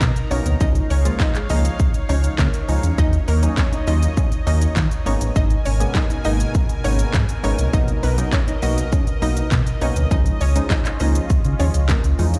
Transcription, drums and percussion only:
0.01 kick, snare, clap, shaker
0.16 closed hi-hat, shaker
0.31 open hi-hat, shaker
0.46 closed hi-hat, shaker
0.61 kick, shaker
0.75 closed hi-hat, shaker
0.90 open hi-hat, shaker
1.05 closed hi-hat, shaker
1.19 kick, snare, clap, shaker
1.35 clap, closed hi-hat, shaker
1.49 open hi-hat, shaker
1.65 closed hi-hat, shaker
1.80 kick, shaker
1.94 closed hi-hat, shaker
2.09 open hi-hat, shaker
2.24 closed hi-hat, shaker
2.38 kick, snare, clap, shaker
2.54 closed hi-hat, shaker
2.69 open hi-hat, shaker
2.83 closed hi-hat, shaker
2.98 kick, shaker
3.13 closed hi-hat, shaker
3.28 open hi-hat, shaker
3.43 closed hi-hat, shaker
3.57 kick, snare, clap, shaker
3.73 closed hi-hat, shaker
3.87 open hi-hat, shaker
4.03 closed hi-hat, shaker
4.17 kick, shaker
4.32 closed hi-hat, shaker
4.47 open hi-hat, shaker
4.62 closed hi-hat, shaker
4.76 kick, snare, clap, shaker
4.91 closed hi-hat, shaker
5.06 open hi-hat, shaker
5.21 closed hi-hat, shaker
5.36 kick, shaker
5.50 closed hi-hat, shaker
5.65 open hi-hat, shaker
5.80 closed hi-hat, shaker
5.95 kick, snare, clap, shaker
6.10 closed hi-hat, shaker
6.25 open hi-hat, shaker
6.40 closed hi-hat, shaker
6.55 kick, shaker
6.69 closed hi-hat, shaker
6.84 open hi-hat, shaker
6.99 closed hi-hat, shaker
7.13 kick, snare, clap, shaker
7.29 closed hi-hat, shaker
7.44 open hi-hat, shaker
7.59 closed hi-hat, shaker
7.74 kick, shaker
7.88 closed hi-hat, shaker
8.03 open hi-hat, shaker
8.18 closed hi-hat, shaker
8.32 kick, snare, clap, shaker
8.48 closed hi-hat, shaker
8.62 open hi-hat, shaker
8.78 closed hi-hat, shaker
8.92 kick, shaker
9.07 closed hi-hat, shaker
9.22 open hi-hat, shaker
9.37 closed hi-hat, shaker
9.51 kick, snare, clap, shaker
9.67 closed hi-hat, shaker
9.81 open hi-hat, shaker
9.96 closed hi-hat, shaker
10.11 kick, shaker
10.26 closed hi-hat, shaker
10.41 open hi-hat, shaker
10.56 closed hi-hat, shaker
10.70 kick, snare, clap, shaker
10.85 clap, closed hi-hat, shaker
11.00 open hi-hat, shaker
11.15 closed hi-hat, shaker
11.30 kick, shaker
11.45 closed hi-hat, shaker
11.60 open hi-hat, shaker
11.74 closed hi-hat, shaker
11.88 kick, snare, clap, shaker
12.04 closed hi-hat, shaker
12.19 open hi-hat, shaker
12.34 closed hi-hat, shaker

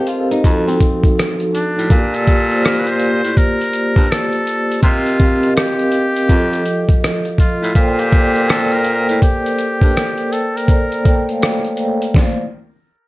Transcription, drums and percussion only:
0.07 closed hi-hat
0.31 closed hi-hat
0.44 kick, closed hi-hat
0.69 closed hi-hat
0.80 kick, closed hi-hat
1.04 kick, closed hi-hat
1.19 cross-stick, closed hi-hat
1.40 closed hi-hat
1.55 closed hi-hat
1.79 closed hi-hat
1.90 kick, closed hi-hat
2.14 closed hi-hat
2.27 kick, closed hi-hat
2.51 closed hi-hat
2.65 cross-stick, closed hi-hat
2.87 closed hi-hat
3.00 closed hi-hat
3.25 closed hi-hat
3.37 kick, closed hi-hat
3.61 closed hi-hat
3.73 closed hi-hat
3.96 kick, closed hi-hat
4.12 cross-stick, closed hi-hat
4.33 closed hi-hat
4.47 closed hi-hat
4.72 closed hi-hat
4.83 kick, closed hi-hat
5.06 closed hi-hat
5.20 kick, closed hi-hat
5.43 closed hi-hat
5.57 cross-stick, closed hi-hat
5.79 closed hi-hat
5.92 closed hi-hat
6.17 closed hi-hat
6.29 kick, closed hi-hat
6.53 closed hi-hat
6.65 closed hi-hat
6.89 kick, closed hi-hat
7.04 cross-stick, closed hi-hat
7.25 closed hi-hat
7.38 kick, closed hi-hat
7.64 closed hi-hat
7.75 kick, closed hi-hat
7.99 closed hi-hat
8.12 kick, closed hi-hat
8.36 closed hi-hat
8.49 cross-stick, closed hi-hat
8.72 closed hi-hat
8.84 closed hi-hat
9.09 closed hi-hat
9.22 kick, closed hi-hat
9.46 closed hi-hat
9.59 closed hi-hat
9.81 kick, closed hi-hat
9.97 cross-stick, closed hi-hat
10.18 closed hi-hat
10.33 closed hi-hat
10.57 closed hi-hat
10.68 kick, closed hi-hat
10.92 closed hi-hat
11.05 kick, closed hi-hat
11.29 closed hi-hat
11.42 cross-stick, closed hi-hat
11.65 closed hi-hat
11.77 closed hi-hat
12.02 closed hi-hat
12.14 kick, snare

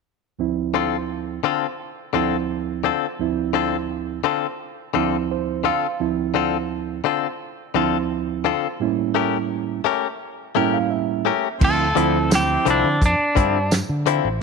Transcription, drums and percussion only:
11.61 kick, crash
11.97 closed hi-hat
12.31 snare, closed hi-hat, tambourine
12.66 closed hi-hat
13.02 kick, closed hi-hat
13.37 kick, closed hi-hat
13.71 snare, closed hi-hat, tambourine
14.06 closed hi-hat

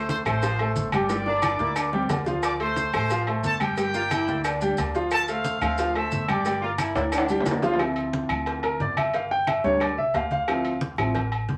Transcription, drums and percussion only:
0.09 cowbell, high conga, maracas
0.26 high conga, low conga, low agogo, claves, maracas
0.42 cowbell, low agogo, maracas
0.59 high conga, low agogo
0.76 cowbell, high conga, maracas
0.92 cowbell, high conga, low agogo, claves, maracas
1.09 cowbell, high bongo, low agogo, maracas
1.26 high bongo, high conga
1.42 cowbell, high bongo, high conga, low agogo, claves, maracas
1.59 cowbell, high conga, maracas
1.76 cowbell, high conga, low agogo, claves, maracas
1.93 low bongo, high conga
2.10 cowbell, low bongo, high conga, low timbale, low agogo, maracas
2.26 cowbell, low bongo, high conga, maracas
2.43 cowbell, low agogo, claves, maracas
2.60 high conga, low agogo
2.76 cowbell, high conga, maracas
2.93 high conga, low conga, low agogo, claves, maracas
3.10 cowbell, high conga, low agogo, maracas
3.27 high conga, low agogo
3.44 cowbell, high conga, maracas
3.60 cowbell, high conga, low agogo, claves, maracas
3.77 cowbell, low agogo, maracas
3.94 high conga, maracas
4.11 cowbell, high conga, low agogo, claves, maracas
4.28 cowbell, maracas
4.44 cowbell, high conga, low agogo, claves, maracas
4.61 high conga, maracas
4.77 cowbell, high conga, low agogo, maracas
4.95 cowbell, maracas
5.11 cowbell, high conga, low agogo, claves, maracas
5.28 high conga, low agogo, maracas
5.45 cowbell, high conga, maracas
5.61 high conga, low conga, low agogo, claves, maracas
5.78 cowbell, high conga, low agogo, maracas
5.95 high conga, low agogo
6.11 cowbell, high conga, maracas
6.28 cowbell, high conga, low agogo, claves, maracas
6.45 cowbell, high conga, low agogo, maracas
6.62 high conga
6.78 cowbell, high conga, low agogo, claves, maracas
6.95 cowbell, high conga, high timbale, maracas
7.12 cowbell, high conga, low agogo, claves, maracas
7.18 high timbale
7.29 high bongo, high conga, maracas
7.41 low timbale
7.46 cowbell, high bongo, high conga, low agogo, maracas
7.51 low timbale
7.62 cowbell, low bongo, low timbale, maracas
7.74 low timbale
7.79 cowbell, high conga, low agogo, claves
7.96 high conga, low agogo
8.13 cowbell, high conga
8.29 high conga, low conga, low agogo, claves
8.46 cowbell, high conga, low agogo
8.63 high conga, low agogo
8.80 cowbell, high conga
8.97 cowbell, high conga, low agogo, claves
9.14 cowbell, high conga, low agogo
9.31 high conga
9.47 cowbell, high conga, low agogo, claves
9.64 cowbell
9.80 cowbell, high conga, low agogo, claves
9.97 high conga
10.14 cowbell, high conga, low timbale, low agogo
10.31 cowbell, high conga
10.48 cowbell, high conga, low agogo, claves
10.64 high conga, low agogo
10.81 cowbell, high conga
10.98 high conga, low conga, low agogo, claves
11.15 cowbell, high conga, low conga, low agogo
11.32 high conga, low agogo
11.49 cowbell, high conga

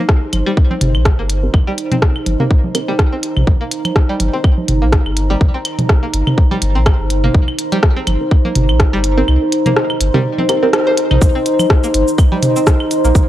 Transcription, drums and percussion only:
0.09 kick, cross-stick
0.33 closed hi-hat, high conga, claves
0.57 kick
0.71 high conga
0.81 closed hi-hat, mid tom
0.95 claves
1.05 kick, cross-stick, closed hi-hat
1.30 closed hi-hat
1.54 kick, claves
1.78 closed hi-hat
1.92 closed hi-hat, mid tom, high conga
2.02 kick, cross-stick
2.16 claves
2.26 closed hi-hat, high conga
2.40 mid tom
2.51 kick
2.64 high conga
2.75 closed hi-hat, claves
2.99 kick, cross-stick, closed hi-hat
3.23 closed hi-hat
3.37 mid tom, claves
3.47 kick
3.72 closed hi-hat
3.85 closed hi-hat, high conga, claves
3.96 kick, cross-stick
4.20 closed hi-hat, high conga
4.44 kick, claves
4.58 high conga
4.68 closed hi-hat, mid tom
4.93 kick, cross-stick, closed hi-hat
5.06 claves
5.17 closed hi-hat
5.41 kick
5.65 closed hi-hat, claves
5.79 closed hi-hat, mid tom, high conga
5.89 kick, cross-stick
6.14 closed hi-hat
6.27 mid tom, claves
6.38 kick
6.51 high conga
6.62 closed hi-hat
6.86 kick, cross-stick, closed hi-hat, claves
7.10 closed hi-hat
7.24 mid tom
7.34 kick
7.48 claves
7.59 closed hi-hat
7.72 closed hi-hat, high conga
7.83 kick, cross-stick
8.07 closed hi-hat, high conga, claves
8.31 kick
8.45 high conga
8.55 closed hi-hat, mid tom
8.69 claves
8.80 kick, cross-stick, closed hi-hat
9.04 closed hi-hat
9.28 claves
9.52 closed hi-hat
9.66 closed hi-hat, mid tom, high conga
9.76 cross-stick
9.90 claves
10.01 closed hi-hat
10.14 mid tom
10.38 high conga
10.49 closed hi-hat, claves
10.73 cross-stick, closed hi-hat
10.98 closed hi-hat
11.11 mid tom, claves
11.22 kick, cabasa
11.46 closed hi-hat, cabasa
11.59 high conga, cabasa, claves
11.70 kick, cross-stick
11.84 cabasa
11.94 closed hi-hat, cabasa
12.08 cabasa
12.18 kick, cabasa, claves
12.32 high conga
12.43 closed hi-hat, mid tom, cabasa
12.56 cabasa
12.67 kick, cross-stick, cabasa
12.80 claves
12.91 closed hi-hat, cabasa
13.05 cabasa
13.15 kick, cabasa

